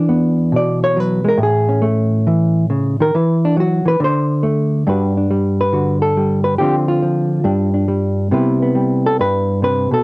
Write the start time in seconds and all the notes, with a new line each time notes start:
Already playing: E3 D4 D5
0.09 B3
0.52 B2
0.56 D5
0.84 C#5
0.97 F#3 B4
1.24 G#3 A#4
1.38 A2
1.43 G#4
1.69 C#4
1.82 A3
2.27 E3
2.70 C#3
3.00 D#3 A#4
3.15 E3 B4
3.45 D4
3.57 F#3 F#4
3.85 E3 B4
4.00 D3
4.04 C5
4.43 A3
4.87 G2 G3 D4 F#4 B4
5.17 D4
5.31 G3
5.61 B4
5.73 D3 F#4
6.02 A4
6.17 G3
6.44 B4
6.58 D3 F3 C4 F4 G4
6.88 F4
7.02 F3
7.44 G2 G3 D4
7.74 D4
7.88 G3
8.31 C3 G3 B3 E4 B4
8.62 B3
8.75 G3
9.06 A4
9.19 G2 B4
9.62 C3 B4
9.91 B2 A4